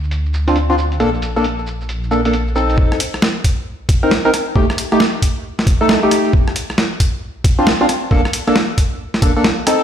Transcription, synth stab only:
0, 0, Header, 1, 2, 480
1, 0, Start_track
1, 0, Tempo, 444444
1, 1081, Time_signature, 4, 2, 24, 8
1, 10621, End_track
2, 0, Start_track
2, 0, Title_t, "Synth stab"
2, 0, Program_c, 0, 62
2, 514, Note_on_c, 0, 60, 93
2, 514, Note_on_c, 0, 62, 88
2, 514, Note_on_c, 0, 65, 102
2, 616, Note_off_c, 0, 60, 0
2, 616, Note_off_c, 0, 62, 0
2, 616, Note_off_c, 0, 65, 0
2, 753, Note_on_c, 0, 62, 86
2, 753, Note_on_c, 0, 65, 106
2, 754, Note_on_c, 0, 60, 98
2, 813, Note_off_c, 0, 60, 0
2, 813, Note_off_c, 0, 62, 0
2, 813, Note_off_c, 0, 65, 0
2, 1080, Note_on_c, 0, 58, 99
2, 1081, Note_on_c, 0, 62, 86
2, 1081, Note_on_c, 0, 69, 107
2, 1185, Note_off_c, 0, 58, 0
2, 1185, Note_off_c, 0, 62, 0
2, 1185, Note_off_c, 0, 69, 0
2, 1473, Note_on_c, 0, 58, 98
2, 1473, Note_on_c, 0, 62, 83
2, 1473, Note_on_c, 0, 69, 100
2, 1575, Note_off_c, 0, 58, 0
2, 1575, Note_off_c, 0, 69, 0
2, 1576, Note_off_c, 0, 62, 0
2, 2280, Note_on_c, 0, 58, 84
2, 2280, Note_on_c, 0, 62, 78
2, 2280, Note_on_c, 0, 69, 90
2, 2385, Note_off_c, 0, 58, 0
2, 2385, Note_off_c, 0, 62, 0
2, 2385, Note_off_c, 0, 69, 0
2, 2433, Note_on_c, 0, 58, 75
2, 2433, Note_on_c, 0, 62, 67
2, 2433, Note_on_c, 0, 69, 80
2, 2535, Note_off_c, 0, 58, 0
2, 2535, Note_off_c, 0, 62, 0
2, 2535, Note_off_c, 0, 69, 0
2, 2761, Note_on_c, 0, 60, 83
2, 2761, Note_on_c, 0, 63, 76
2, 2761, Note_on_c, 0, 69, 92
2, 3241, Note_off_c, 0, 60, 0
2, 3241, Note_off_c, 0, 63, 0
2, 3241, Note_off_c, 0, 69, 0
2, 4353, Note_on_c, 0, 60, 94
2, 4353, Note_on_c, 0, 70, 107
2, 4354, Note_on_c, 0, 63, 86
2, 4455, Note_off_c, 0, 60, 0
2, 4455, Note_off_c, 0, 70, 0
2, 4456, Note_off_c, 0, 63, 0
2, 4592, Note_on_c, 0, 60, 96
2, 4592, Note_on_c, 0, 63, 88
2, 4592, Note_on_c, 0, 70, 107
2, 4653, Note_off_c, 0, 60, 0
2, 4653, Note_off_c, 0, 63, 0
2, 4653, Note_off_c, 0, 70, 0
2, 4920, Note_on_c, 0, 57, 95
2, 4920, Note_on_c, 0, 63, 88
2, 4920, Note_on_c, 0, 67, 113
2, 5025, Note_off_c, 0, 57, 0
2, 5025, Note_off_c, 0, 63, 0
2, 5025, Note_off_c, 0, 67, 0
2, 5314, Note_on_c, 0, 57, 94
2, 5314, Note_on_c, 0, 63, 89
2, 5314, Note_on_c, 0, 67, 108
2, 5416, Note_off_c, 0, 57, 0
2, 5416, Note_off_c, 0, 63, 0
2, 5416, Note_off_c, 0, 67, 0
2, 6274, Note_on_c, 0, 57, 97
2, 6274, Note_on_c, 0, 63, 86
2, 6274, Note_on_c, 0, 69, 108
2, 6477, Note_off_c, 0, 57, 0
2, 6477, Note_off_c, 0, 63, 0
2, 6477, Note_off_c, 0, 69, 0
2, 6513, Note_on_c, 0, 57, 87
2, 6513, Note_on_c, 0, 63, 77
2, 6514, Note_on_c, 0, 67, 92
2, 6830, Note_off_c, 0, 57, 0
2, 6830, Note_off_c, 0, 63, 0
2, 6831, Note_off_c, 0, 67, 0
2, 8193, Note_on_c, 0, 60, 91
2, 8193, Note_on_c, 0, 65, 103
2, 8194, Note_on_c, 0, 62, 89
2, 8295, Note_off_c, 0, 60, 0
2, 8295, Note_off_c, 0, 65, 0
2, 8296, Note_off_c, 0, 62, 0
2, 8433, Note_on_c, 0, 60, 94
2, 8434, Note_on_c, 0, 62, 89
2, 8434, Note_on_c, 0, 65, 108
2, 8493, Note_off_c, 0, 60, 0
2, 8494, Note_off_c, 0, 62, 0
2, 8494, Note_off_c, 0, 65, 0
2, 8760, Note_on_c, 0, 58, 99
2, 8760, Note_on_c, 0, 62, 91
2, 8760, Note_on_c, 0, 69, 108
2, 8865, Note_off_c, 0, 58, 0
2, 8865, Note_off_c, 0, 62, 0
2, 8865, Note_off_c, 0, 69, 0
2, 9152, Note_on_c, 0, 58, 102
2, 9152, Note_on_c, 0, 69, 102
2, 9153, Note_on_c, 0, 62, 91
2, 9255, Note_off_c, 0, 58, 0
2, 9255, Note_off_c, 0, 62, 0
2, 9255, Note_off_c, 0, 69, 0
2, 9961, Note_on_c, 0, 58, 82
2, 9961, Note_on_c, 0, 62, 76
2, 9961, Note_on_c, 0, 69, 93
2, 10065, Note_off_c, 0, 58, 0
2, 10065, Note_off_c, 0, 62, 0
2, 10066, Note_off_c, 0, 69, 0
2, 10114, Note_on_c, 0, 58, 75
2, 10115, Note_on_c, 0, 62, 67
2, 10115, Note_on_c, 0, 69, 85
2, 10216, Note_off_c, 0, 58, 0
2, 10216, Note_off_c, 0, 62, 0
2, 10216, Note_off_c, 0, 69, 0
2, 10441, Note_on_c, 0, 60, 87
2, 10441, Note_on_c, 0, 63, 77
2, 10441, Note_on_c, 0, 69, 92
2, 10621, Note_off_c, 0, 60, 0
2, 10621, Note_off_c, 0, 63, 0
2, 10621, Note_off_c, 0, 69, 0
2, 10621, End_track
0, 0, End_of_file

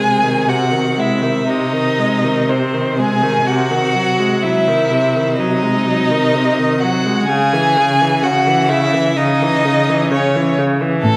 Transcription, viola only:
0, 0, Header, 1, 2, 480
1, 0, Start_track
1, 0, Key_signature, 4, "minor"
1, 0, Tempo, 1000000
1, 1199, Tempo, 967742
1, 1683, Time_signature, 4, 2, 24, 8
1, 2159, Tempo, 949367
1, 4079, Tempo, 934579
1, 5588, End_track
2, 0, Start_track
2, 0, Title_t, "Viola"
2, 0, Program_c, 0, 41
2, 0, Note_on_c, 0, 56, 31
2, 113, Note_on_c, 0, 51, 32
2, 120, Note_off_c, 0, 56, 0
2, 227, Note_on_c, 0, 48, 37
2, 235, Note_off_c, 0, 51, 0
2, 344, Note_on_c, 0, 51, 34
2, 351, Note_off_c, 0, 48, 0
2, 471, Note_on_c, 0, 56, 35
2, 478, Note_off_c, 0, 51, 0
2, 588, Note_on_c, 0, 51, 36
2, 595, Note_off_c, 0, 56, 0
2, 702, Note_off_c, 0, 51, 0
2, 705, Note_on_c, 0, 48, 39
2, 832, Note_on_c, 0, 51, 35
2, 839, Note_off_c, 0, 48, 0
2, 955, Note_on_c, 0, 56, 34
2, 962, Note_off_c, 0, 51, 0
2, 1075, Note_on_c, 0, 51, 35
2, 1083, Note_off_c, 0, 56, 0
2, 1196, Note_on_c, 0, 48, 37
2, 1203, Note_off_c, 0, 51, 0
2, 1319, Note_on_c, 0, 51, 38
2, 1326, Note_off_c, 0, 48, 0
2, 1443, Note_on_c, 0, 56, 39
2, 1451, Note_off_c, 0, 51, 0
2, 1559, Note_on_c, 0, 51, 38
2, 1567, Note_off_c, 0, 56, 0
2, 1680, Note_off_c, 0, 51, 0
2, 1682, Note_on_c, 0, 48, 44
2, 1800, Note_on_c, 0, 51, 38
2, 1808, Note_off_c, 0, 48, 0
2, 1920, Note_on_c, 0, 54, 36
2, 1927, Note_off_c, 0, 51, 0
2, 2040, Note_on_c, 0, 56, 35
2, 2047, Note_off_c, 0, 54, 0
2, 2161, Note_on_c, 0, 54, 39
2, 2169, Note_off_c, 0, 56, 0
2, 2283, Note_on_c, 0, 51, 35
2, 2291, Note_off_c, 0, 54, 0
2, 2404, Note_on_c, 0, 48, 38
2, 2412, Note_off_c, 0, 51, 0
2, 2524, Note_on_c, 0, 51, 40
2, 2531, Note_off_c, 0, 48, 0
2, 2640, Note_off_c, 0, 51, 0
2, 2643, Note_on_c, 0, 54, 43
2, 2764, Note_on_c, 0, 56, 38
2, 2772, Note_off_c, 0, 54, 0
2, 2884, Note_on_c, 0, 54, 36
2, 2891, Note_off_c, 0, 56, 0
2, 3007, Note_on_c, 0, 51, 39
2, 3014, Note_off_c, 0, 54, 0
2, 3130, Note_on_c, 0, 48, 37
2, 3138, Note_off_c, 0, 51, 0
2, 3252, Note_on_c, 0, 51, 36
2, 3260, Note_off_c, 0, 48, 0
2, 3372, Note_on_c, 0, 54, 39
2, 3380, Note_off_c, 0, 51, 0
2, 3487, Note_on_c, 0, 56, 40
2, 3494, Note_off_c, 0, 54, 0
2, 3605, Note_off_c, 0, 56, 0
2, 3608, Note_on_c, 0, 49, 45
2, 3727, Note_on_c, 0, 52, 40
2, 3735, Note_off_c, 0, 49, 0
2, 3849, Note_on_c, 0, 49, 38
2, 3856, Note_off_c, 0, 52, 0
2, 3970, Note_on_c, 0, 52, 38
2, 3977, Note_off_c, 0, 49, 0
2, 4082, Note_on_c, 0, 49, 43
2, 4089, Note_off_c, 0, 52, 0
2, 4205, Note_on_c, 0, 52, 39
2, 4213, Note_off_c, 0, 49, 0
2, 4321, Note_on_c, 0, 49, 44
2, 4328, Note_off_c, 0, 52, 0
2, 4441, Note_on_c, 0, 52, 44
2, 4449, Note_off_c, 0, 49, 0
2, 4560, Note_off_c, 0, 52, 0
2, 4563, Note_on_c, 0, 49, 44
2, 4691, Note_on_c, 0, 52, 44
2, 4699, Note_off_c, 0, 49, 0
2, 4809, Note_on_c, 0, 49, 42
2, 4816, Note_off_c, 0, 52, 0
2, 4934, Note_on_c, 0, 52, 43
2, 4942, Note_off_c, 0, 49, 0
2, 5047, Note_on_c, 0, 49, 47
2, 5055, Note_off_c, 0, 52, 0
2, 5171, Note_on_c, 0, 52, 44
2, 5179, Note_off_c, 0, 49, 0
2, 5288, Note_on_c, 0, 49, 45
2, 5296, Note_off_c, 0, 52, 0
2, 5404, Note_on_c, 0, 52, 46
2, 5412, Note_off_c, 0, 49, 0
2, 5522, Note_off_c, 0, 52, 0
2, 5588, End_track
0, 0, End_of_file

